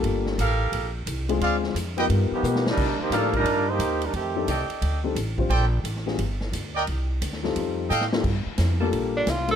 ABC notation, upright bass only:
X:1
M:4/4
L:1/8
Q:"Swing" 1/4=176
K:Gm
V:1 name="Upright bass" clef=bass
G,,,2 A,,,2 B,,,2 C,,2 | D,,2 F,,2 G,, z =B,,2 | C, z A,,2 G,,2 E,,2 | F,,2 C,, z D,,2 A,,,2 |
B,,,2 A,,,2 G,,,2 D,,2 | C,,2 D,,2 F,,2 A,,2 | G,, z F,,2 B,,,2 C,,2 |]